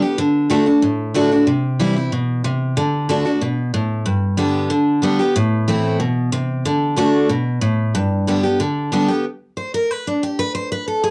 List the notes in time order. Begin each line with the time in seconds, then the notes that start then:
0.02 B3 G4
0.18 D3
0.50 D3 A3 D4 F#4
0.66 D4 F#4
0.82 A2
1.14 D3 A3 D4 F#4
1.31 D4 F#4
1.47 C3
1.79 E3 G3 C4 E4
1.96 C4 E4
2.12 B2
2.44 C3
2.77 D3
3.09 D3 A3 D4 F#4
3.25 D4 F#4
3.42 B2
3.74 A2
4.06 G2
4.37 D3 G3 B3 G4
4.70 D3
5.02 D3 G3 B3 G4
5.19 B3 G4
5.36 A2
5.68 E3 A3 C4 E4
6.00 B2
6.32 C3
6.65 D3
6.96 D3 A3 D4 F#4
7.29 B2
7.61 A2
7.95 G2
8.27 D3 G3 B3 G4
8.43 B3 G4
8.60 D3
8.92 D3 G3 B3 G4
9.08 B3 G4
9.57 C5
9.74 A#4
9.91 B4
10.07 D4
10.23 G4
10.39 B4
10.55 C5
10.72 B4
10.88 A4
11.04 G#4